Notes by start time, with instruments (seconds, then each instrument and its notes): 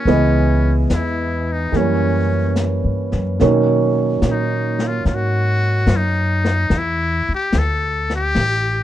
Already playing: muted trumpet C#4
0.05 upright bass C#2, grand piano E3 G#3 B3 D#5, brush sweep, snare
0.90 upright bass E2, muted trumpet E4, snare, hi-hat pedal
1.52 muted trumpet D#4
1.72 upright bass F#2, grand piano E3 G3 A#3, brush sweep, snare
1.76 muted trumpet C#4, grand piano C#4
2.56 snare, hi-hat pedal
2.84 upright bass G2
3.12 upright bass F#2, snare
3.40 upright bass B2, grand piano D#3 F#3 A#3 C#4, brush sweep, snare
4.22 upright bass A#2, snare, hi-hat pedal
4.31 muted trumpet D#4
4.79 snare
4.87 muted trumpet F4
5.05 upright bass G#2, muted trumpet F4, brush sweep, snare
5.15 muted trumpet F#4
5.86 upright bass F#2, snare, hi-hat pedal
5.96 muted trumpet D#4
6.45 snare
6.70 upright bass E2, brush sweep, snare
6.78 muted trumpet E4
7.29 muted upright bass stroke
7.35 muted trumpet G4
7.52 upright bass D2, snare, hi-hat pedal
7.59 muted trumpet A4
8.10 snare
8.16 muted trumpet G4
8.35 upright bass A1, brush sweep, snare